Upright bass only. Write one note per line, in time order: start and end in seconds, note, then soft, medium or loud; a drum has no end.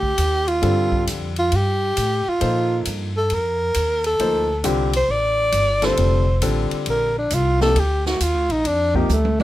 0.00 0.16 D2 medium
0.18 0.61 D#2 medium
0.63 1.06 G2 medium
1.07 1.50 F2 medium
1.52 1.95 G2 medium
1.97 2.24 A2 medium
2.27 muted upright bass stroke soft
2.42 2.85 A#2 medium
2.87 3.29 G2 medium
3.32 3.74 F2 medium
3.76 4.19 D#2 medium
4.19 4.63 D2 medium
4.64 5.07 C2 medium
5.08 5.52 A1 medium
5.52 5.96 G1 medium
5.98 6.41 F1 medium
6.42 6.70 A1 medium
6.72 muted upright bass stroke soft
6.86 7.30 A#1 medium
7.31 7.75 C2 medium
7.75 8.19 D2 medium
8.20 8.35 D#2 medium
8.35 8.49 D2 soft
8.49 8.63 A#1 medium
8.64 9.08 F2 medium
9.09 9.43 D2 medium